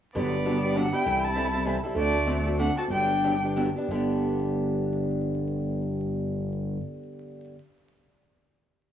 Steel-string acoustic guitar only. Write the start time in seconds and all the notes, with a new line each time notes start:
0.15 D3 F#3 B3 D4 G4
0.45 D3 F#3 B3 D4 G4
0.64 B3 D4 G4
0.76 D3 F#3 B3 D4 G4
0.93 B3 D4 G4
1.05 C3 E3 G3 C4 E4 A4
1.36 C3 E3 G3 C4 E4 A4
1.53 G3 C4 E4 A4
1.66 C3 E3 G3 C4 E4 A4
1.83 G3 C4 E4 A4
1.95 D3 A3 C4 F#4 A4
2.27 D3 A3 C4 F#4 A4
2.46 C4 F#4 A4
2.59 D3 A3 C4 F#4 A4
2.79 C4 F#4 A4
2.92 D3 F#3 B3 D4 G4
3.24 D3 F#3 B3 D4 G4
3.43 B3 D4 G4
3.56 D3 F#3 B3 D4 G4
3.76 B3 D4 G4
3.91 G2 D3 B3 D4 G4